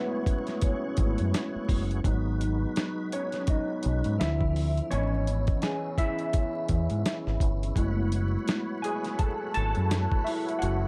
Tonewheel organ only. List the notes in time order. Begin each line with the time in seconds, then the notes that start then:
Already playing: F#3 E4 F#4 G#4 C#5
2.04 G#3 D#4 F#4 B4
4.17 D3 F3 C4 E4
4.91 B3 C#4
7.75 F#3 F#4 B4 C#5